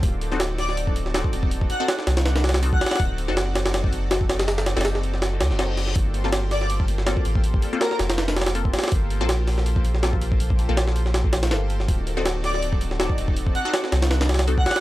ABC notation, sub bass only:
X:1
M:4/4
L:1/16
Q:"Swing 16ths" 1/4=162
K:Gm
V:1 name="Sub bass" clef=bass
D,,,12- D,,, z E,,,2- | E,,,2 z4 C,,8 z2 | D,,,3 ^F,,,12- F,,,- | ^F,,,3 F,,,6- F,,, D,, F,,,4- F,,, |
G,,,12- G,,, z A,,,2- | A,,,2 z4 F,,,8 z2 | G,,,3 B,,,12- B,,,- | B,,,3 B,,,8- B,,, G,,,4 |
D,,,12- D,,, z E,,,2- | E,,,2 z4 C,,8 z2 |]